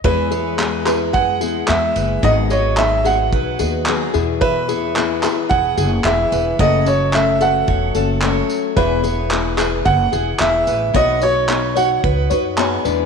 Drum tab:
TB |-x-x-x-x|-x-x-x-x|-x-x-x-x|-x-x-x-x|
CP |--xx--x-|--x---x-|--xx--x-|--x---x-|
BD |o---o---|o---o---|o---o---|o---o---|

TB |-x-x-x-x|-x-x-x-x|
CP |--xx--x-|--x---x-|
BD |o---o---|o---o---|